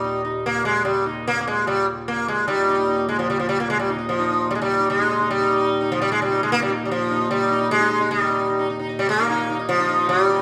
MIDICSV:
0, 0, Header, 1, 3, 480
1, 0, Start_track
1, 0, Tempo, 404040
1, 2938, Time_signature, 7, 2, 24, 8
1, 6767, Tempo, 398936
1, 12450, End_track
2, 0, Start_track
2, 0, Title_t, "Sitar"
2, 0, Program_c, 0, 104
2, 0, Note_on_c, 0, 55, 80
2, 51, Note_on_c, 0, 63, 37
2, 245, Note_off_c, 0, 55, 0
2, 273, Note_off_c, 0, 63, 0
2, 293, Note_on_c, 0, 63, 40
2, 515, Note_off_c, 0, 63, 0
2, 547, Note_on_c, 0, 58, 98
2, 768, Note_off_c, 0, 58, 0
2, 773, Note_on_c, 0, 56, 88
2, 1003, Note_off_c, 0, 56, 0
2, 1008, Note_on_c, 0, 55, 75
2, 1234, Note_off_c, 0, 55, 0
2, 1259, Note_on_c, 0, 63, 40
2, 1480, Note_off_c, 0, 63, 0
2, 1515, Note_on_c, 0, 58, 107
2, 1659, Note_off_c, 0, 58, 0
2, 1673, Note_on_c, 0, 58, 68
2, 1734, Note_off_c, 0, 58, 0
2, 1753, Note_on_c, 0, 56, 86
2, 1982, Note_off_c, 0, 56, 0
2, 1987, Note_on_c, 0, 55, 76
2, 2206, Note_off_c, 0, 55, 0
2, 2471, Note_on_c, 0, 58, 91
2, 2708, Note_off_c, 0, 58, 0
2, 2713, Note_on_c, 0, 56, 91
2, 2937, Note_on_c, 0, 63, 37
2, 2938, Note_off_c, 0, 56, 0
2, 2942, Note_on_c, 0, 55, 83
2, 3054, Note_off_c, 0, 63, 0
2, 3068, Note_on_c, 0, 63, 36
2, 3169, Note_off_c, 0, 63, 0
2, 3183, Note_on_c, 0, 63, 39
2, 3282, Note_off_c, 0, 63, 0
2, 3296, Note_on_c, 0, 63, 34
2, 3409, Note_off_c, 0, 63, 0
2, 3423, Note_on_c, 0, 63, 38
2, 3526, Note_off_c, 0, 63, 0
2, 3540, Note_on_c, 0, 63, 37
2, 3613, Note_off_c, 0, 55, 0
2, 3666, Note_on_c, 0, 56, 78
2, 3762, Note_off_c, 0, 63, 0
2, 3774, Note_off_c, 0, 56, 0
2, 3790, Note_on_c, 0, 53, 76
2, 3907, Note_off_c, 0, 53, 0
2, 3917, Note_on_c, 0, 55, 84
2, 4019, Note_off_c, 0, 55, 0
2, 4033, Note_on_c, 0, 53, 76
2, 4137, Note_off_c, 0, 53, 0
2, 4144, Note_on_c, 0, 55, 99
2, 4264, Note_off_c, 0, 55, 0
2, 4277, Note_on_c, 0, 58, 91
2, 4390, Note_off_c, 0, 58, 0
2, 4394, Note_on_c, 0, 56, 99
2, 4504, Note_off_c, 0, 56, 0
2, 4509, Note_on_c, 0, 55, 78
2, 4615, Note_off_c, 0, 55, 0
2, 4627, Note_on_c, 0, 63, 46
2, 4720, Note_off_c, 0, 63, 0
2, 4735, Note_on_c, 0, 63, 38
2, 4858, Note_on_c, 0, 53, 85
2, 4958, Note_off_c, 0, 63, 0
2, 4982, Note_on_c, 0, 63, 36
2, 5097, Note_off_c, 0, 63, 0
2, 5111, Note_on_c, 0, 63, 36
2, 5217, Note_off_c, 0, 63, 0
2, 5231, Note_on_c, 0, 63, 40
2, 5349, Note_off_c, 0, 53, 0
2, 5354, Note_on_c, 0, 55, 89
2, 5404, Note_off_c, 0, 55, 0
2, 5409, Note_on_c, 0, 56, 74
2, 5446, Note_off_c, 0, 63, 0
2, 5478, Note_off_c, 0, 56, 0
2, 5483, Note_on_c, 0, 55, 87
2, 5696, Note_on_c, 0, 63, 36
2, 5815, Note_off_c, 0, 55, 0
2, 5819, Note_on_c, 0, 56, 86
2, 5917, Note_off_c, 0, 63, 0
2, 5941, Note_on_c, 0, 63, 46
2, 6047, Note_off_c, 0, 63, 0
2, 6061, Note_on_c, 0, 63, 40
2, 6165, Note_off_c, 0, 63, 0
2, 6180, Note_on_c, 0, 63, 40
2, 6298, Note_off_c, 0, 56, 0
2, 6303, Note_on_c, 0, 55, 96
2, 6397, Note_off_c, 0, 63, 0
2, 6421, Note_on_c, 0, 63, 40
2, 6521, Note_off_c, 0, 63, 0
2, 6536, Note_on_c, 0, 63, 42
2, 6636, Note_off_c, 0, 63, 0
2, 6650, Note_on_c, 0, 63, 40
2, 6872, Note_off_c, 0, 63, 0
2, 6904, Note_on_c, 0, 63, 36
2, 7028, Note_off_c, 0, 55, 0
2, 7033, Note_on_c, 0, 53, 91
2, 7121, Note_off_c, 0, 63, 0
2, 7144, Note_off_c, 0, 53, 0
2, 7151, Note_on_c, 0, 55, 98
2, 7264, Note_off_c, 0, 55, 0
2, 7274, Note_on_c, 0, 56, 94
2, 7385, Note_off_c, 0, 56, 0
2, 7396, Note_on_c, 0, 55, 80
2, 7516, Note_on_c, 0, 63, 43
2, 7631, Note_off_c, 0, 55, 0
2, 7651, Note_on_c, 0, 56, 94
2, 7728, Note_off_c, 0, 63, 0
2, 7754, Note_off_c, 0, 56, 0
2, 7760, Note_on_c, 0, 58, 119
2, 7858, Note_off_c, 0, 58, 0
2, 7880, Note_on_c, 0, 55, 83
2, 7977, Note_on_c, 0, 63, 44
2, 7979, Note_off_c, 0, 55, 0
2, 8161, Note_on_c, 0, 55, 63
2, 8198, Note_off_c, 0, 63, 0
2, 8222, Note_off_c, 0, 55, 0
2, 8233, Note_on_c, 0, 53, 92
2, 8469, Note_on_c, 0, 63, 40
2, 8572, Note_off_c, 0, 63, 0
2, 8587, Note_on_c, 0, 63, 44
2, 8701, Note_off_c, 0, 53, 0
2, 8706, Note_on_c, 0, 55, 101
2, 8804, Note_off_c, 0, 63, 0
2, 8826, Note_on_c, 0, 63, 44
2, 8932, Note_off_c, 0, 63, 0
2, 8946, Note_on_c, 0, 63, 42
2, 9054, Note_off_c, 0, 63, 0
2, 9068, Note_on_c, 0, 63, 39
2, 9147, Note_off_c, 0, 55, 0
2, 9192, Note_on_c, 0, 56, 110
2, 9285, Note_off_c, 0, 63, 0
2, 9300, Note_on_c, 0, 63, 43
2, 9402, Note_off_c, 0, 63, 0
2, 9417, Note_on_c, 0, 63, 40
2, 9525, Note_off_c, 0, 63, 0
2, 9540, Note_on_c, 0, 63, 42
2, 9665, Note_off_c, 0, 56, 0
2, 9670, Note_on_c, 0, 55, 95
2, 9761, Note_off_c, 0, 63, 0
2, 9774, Note_on_c, 0, 63, 45
2, 9884, Note_off_c, 0, 63, 0
2, 9898, Note_on_c, 0, 63, 44
2, 9998, Note_off_c, 0, 63, 0
2, 10012, Note_on_c, 0, 63, 38
2, 10123, Note_off_c, 0, 63, 0
2, 10138, Note_on_c, 0, 63, 36
2, 10236, Note_off_c, 0, 63, 0
2, 10250, Note_on_c, 0, 63, 44
2, 10334, Note_off_c, 0, 55, 0
2, 10365, Note_off_c, 0, 63, 0
2, 10379, Note_on_c, 0, 63, 39
2, 10481, Note_off_c, 0, 63, 0
2, 10495, Note_on_c, 0, 63, 43
2, 10598, Note_off_c, 0, 63, 0
2, 10613, Note_on_c, 0, 63, 36
2, 10730, Note_on_c, 0, 55, 97
2, 10836, Note_off_c, 0, 63, 0
2, 10845, Note_off_c, 0, 55, 0
2, 10850, Note_on_c, 0, 58, 115
2, 10983, Note_on_c, 0, 63, 40
2, 11088, Note_off_c, 0, 63, 0
2, 11102, Note_on_c, 0, 63, 43
2, 11320, Note_off_c, 0, 63, 0
2, 11341, Note_on_c, 0, 63, 42
2, 11408, Note_off_c, 0, 58, 0
2, 11441, Note_off_c, 0, 63, 0
2, 11455, Note_on_c, 0, 63, 42
2, 11569, Note_on_c, 0, 53, 99
2, 11676, Note_off_c, 0, 63, 0
2, 11699, Note_on_c, 0, 63, 38
2, 11802, Note_off_c, 0, 63, 0
2, 11817, Note_on_c, 0, 63, 42
2, 11926, Note_off_c, 0, 63, 0
2, 11940, Note_on_c, 0, 63, 45
2, 12049, Note_off_c, 0, 53, 0
2, 12053, Note_on_c, 0, 55, 106
2, 12157, Note_off_c, 0, 63, 0
2, 12301, Note_on_c, 0, 63, 45
2, 12395, Note_off_c, 0, 63, 0
2, 12409, Note_on_c, 0, 63, 40
2, 12450, Note_off_c, 0, 55, 0
2, 12450, Note_off_c, 0, 63, 0
2, 12450, End_track
3, 0, Start_track
3, 0, Title_t, "Harmonium"
3, 0, Program_c, 1, 20
3, 0, Note_on_c, 1, 39, 67
3, 0, Note_on_c, 1, 46, 68
3, 2929, Note_off_c, 1, 39, 0
3, 2930, Note_off_c, 1, 46, 0
3, 2946, Note_on_c, 1, 39, 70
3, 2948, Note_on_c, 1, 46, 72
3, 12450, Note_off_c, 1, 39, 0
3, 12450, Note_off_c, 1, 46, 0
3, 12450, End_track
0, 0, End_of_file